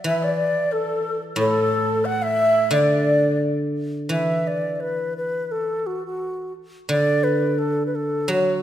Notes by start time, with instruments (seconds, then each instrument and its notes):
Already playing: guzheng F#3
0.04 guzheng E3, xiao E5
0.22 xiao D5
0.40 xiao D5
0.71 xiao A4
1.36 guzheng A2, xiao A4
2.05 xiao F#5
2.21 xiao E5
2.71 guzheng D3, xiao D5
4.09 guzheng E3, xiao E5
4.47 xiao D5
4.76 xiao D5
4.81 xiao B4
5.17 xiao B4
5.51 xiao A4
5.87 xiao F#4
6.06 xiao F#4
6.89 guzheng D3, xiao D5
7.24 xiao B4
7.58 xiao A4
7.86 xiao B4
7.95 xiao A4
8.28 guzheng F#3, xiao F#4